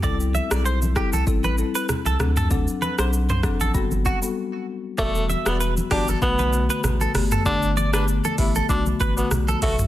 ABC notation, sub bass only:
X:1
M:4/4
L:1/16
Q:"Swing 16ths" 1/4=97
K:G
V:1 name="Sub bass" clef=bass
C,,3 B,,,4 C,, A,,,3 z2 C,, D,,2- | D,,2 z B,,,4 A,,, G,,,3 z4 z | E,,,3 E,,,3 G,,,2 B,,,4 A,,,2 G,,,2 | G,,,4- G,,, z A,,,2 B,,,2 A,,,2 B,,,2 B,,,2 |]